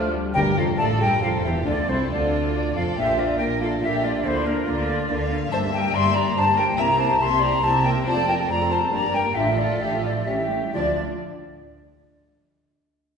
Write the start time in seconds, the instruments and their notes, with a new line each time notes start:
Already playing: double bass section D2, cello section D2, viola section D3 F3, bassoon F3, violin section A3 F4 D5, french horn section A3, clarinet A4, flute section F6
0.12 french horn section G3
0.34 double bass section G1, cello section G2, timpani D3, french horn section G3, violin section G4 A#4, viola section G4, flute section G5
0.57 double bass section F1, cello section F2, french horn section F3, viola section F4, violin section A4, flute section F5
0.78 double bass section A1, cello section A2, french horn section A3, violin section F4 D5, viola section A4, flute section A5
0.99 double bass section G1, cello section G2, french horn section G3, viola section G4, flute section G5
1.03 violin section A#4
1.21 double bass section F1, cello section F2, french horn section F3, viola section F4, violin section A4, flute section F5
1.44 double bass section E1, cello section E2, french horn section E3, viola section E4, violin section G4, flute section E5
1.65 cello section D2, double bass section D2, french horn section D3, viola section D4, violin section F4 A4, flute section D5
1.88 cello section C2, double bass section C2, french horn section C3, viola section C4, violin section E4, flute section C5
2.10 double bass section D2, cello section D2, french horn section D3, viola section D4, violin section F4, flute section D5
2.55 violin section D5
2.75 double bass section F1, cello section F2, french horn section F3, viola section F4, violin section A4, flute section F5
2.96 double bass section A#1, cello section A#2, viola section A#3 F4, french horn section A#3 D4, violin section G4 C5, flute section E5
3.17 viola section A#3 F4, violin section F4, flute section D5
3.38 double bass section A#1, cello section A#2, viola section A#3 F4, violin section A#4, flute section G5
3.61 viola section A#3 F4, violin section A4, flute section F5
3.81 double bass section A#1, cello section A#2, viola section A#3 F4, violin section G4, flute section E5
4.03 viola section A#3 F4, violin section F4, flute section D5
4.24 double bass section D2, cello section D3, viola section A#3 D4, violin section E4 F4, flute section C5
4.46 viola section A#3 D4, violin section D4, flute section A#4
4.66 double bass section D2, cello section D3, viola section A#3 D4, violin section F4, flute section D5
4.88 viola section A#3 D4
5.09 double bass section D2, cello section D3, viola section A#3 D4, violin section F5
5.31 viola section A#3 D4
5.51 double bass section G1, cello section G2, viola section G3 D4, french horn section A#3 D4, violin section C5 E5, flute section A5
5.62 viola section A#3 G4
5.72 viola section G3 D4, violin section A#4, flute section G5
5.84 viola section A#3 G4
5.93 double bass section G1, cello section G2, viola section G3 D4, violin section D5 E5, flute section C6
6.05 viola section A#3 G4
6.16 viola section G3 D4, violin section D5, flute section A#5
6.26 viola section A#3 G4
6.35 double bass section G1, cello section G2, viola section G3 D4, violin section C5, flute section A5
6.47 viola section A#3 G4
6.56 viola section G3 D4, violin section A#4, flute section G5
6.69 viola section A#3 G4
6.77 double bass section C2, cello section C3, viola section A#3 E4, french horn section C4 E4, violin section A#4 E5, flute section A#5
6.89 viola section C4 G4
6.98 viola section A#3 E4, violin section C5, flute section A5
7.10 viola section C4 G4
7.19 double bass section C2, cello section C3, viola section A#3 E4, violin section G4 E5, flute section C6
7.31 viola section C4 G4
7.40 viola section A#3 E4, violin section D5, flute section A#5
7.51 viola section C4 G4
7.61 double bass section C2, cello section C3, viola section A#3 E4, violin section C5 E5, flute section A5
7.73 viola section C4 G4
7.83 viola section A#3 E4, violin section A#4, flute section G5
7.95 viola section C4 G4
8.04 double bass section F1, cello section F2, viola section A3 F4, french horn section C4 F4, violin section C5 D5, flute section A5
8.16 viola section C4 A4
8.26 viola section A3 F4, violin section A#4, flute section G5
8.38 viola section C4 A4
8.48 double bass section F1, cello section F2, viola section A3 F4, violin section C5 D5, flute section A#5
8.60 viola section C4 A4
8.71 viola section A3 F4, violin section C5, flute section A5
8.81 viola section C4 A4
8.91 double bass section G1, cello section G2, viola section A#3 D4, french horn section D4 G4, violin section A#4 D5, flute section A#5
9.02 viola section G3 A#3
9.13 viola section A#3 D4, violin section A#4, flute section G5
9.25 viola section G3 A#3
9.35 double bass section A1, cello section A2, viola section D3 D4, french horn section D4 F4, violin section G4 A4, flute section E5
9.46 viola section F3 F4
9.57 viola section D3 D4, violin section F4, flute section D5
9.69 viola section F3 F4
9.80 double bass section A1, cello section A2, viola section D3 D4, violin section G4, flute section E5
9.91 viola section F3 F4
10.02 viola section D3 D4, violin section F4, flute section D5
10.15 viola section F3 F4
10.26 double bass section A1, cello section A2, viola section A3 C#4, french horn section C#4 G4, violin section G4 C#5, flute section E5
10.38 viola section G3 E4
10.50 viola section A3 C#4
10.62 viola section G3 E4
10.74 double bass section D2, cello section D2, timpani D3, viola section F3 D4, french horn section D4 F4, violin section D4 D5, flute section D5